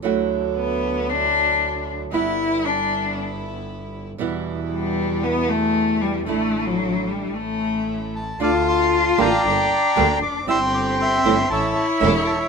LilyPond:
<<
  \new Staff \with { instrumentName = "Bandoneon" } { \time 4/4 \key d \major \tempo 4 = 116 << { r1 | r1 | r1 | r2. r8 a''8 |
\key d \minor d'''8 c'''4 bes''2 d'''8 | e'''8 d'''8 c'''4 a''8 a''8 e'''8 a''8 | } \\ { r1 | r1 | r1 | r1 |
<f'' a''>8 <f'' a''>4 <d'' g''>2 r8 | <g'' c'''>4 <e'' g''>4 <cis'' e''>2 | } >> }
  \new Staff \with { instrumentName = "String section" } { \time 4/4 \key d \major <fis d' e'>1 | <g b e'>1 | <g b e'>1 | <a d' e'>2 <a cis' e'>2 |
\key d \minor <a d' f'>4. <a d' f'>8 <bes d' g'>8 r8 <bes d' g'>8 r8 | <c' e' g'>4. <c' e' g'>8 <cis' e' a'>8 r8 <cis' e' a'>8 r8 | }
  \new Staff \with { instrumentName = "Cello" } { \time 4/4 \key d \major r4 b4 d'4. r8 | e'4 d'4 r2 | r4 g4 b8 a4 g8 | a8. fis8. g8 a4. r8 |
\key d \minor f'2 d'2 | c'2 e'2 | }
  \new Staff \with { instrumentName = "Nylon-string guitar" } { \time 4/4 \key d \major <d fis a e' fis'>1 | <g b e'>1 | <b, e g b e'>1 | <d a d' e'>2 r2 |
\key d \minor <d a d' f'>8 r4 <d g bes d' g'>8 r4 <d g bes d' g'>8 r8 | <g c' e'>8 r4 <e a cis' e'>8 r4 <e a cis' e'>8 r8 | }
  \new Staff \with { instrumentName = "Double bass" } { \clef bass \time 4/4 \key d \major d,1 | g,,1 | e,1 | a,,2 a,,2 |
\key d \minor d,4. a,,8 g,,8 r8 d,8 f,,8 | g,,4. g,,8 a,,8 r8 e,,8 r8 | }
>>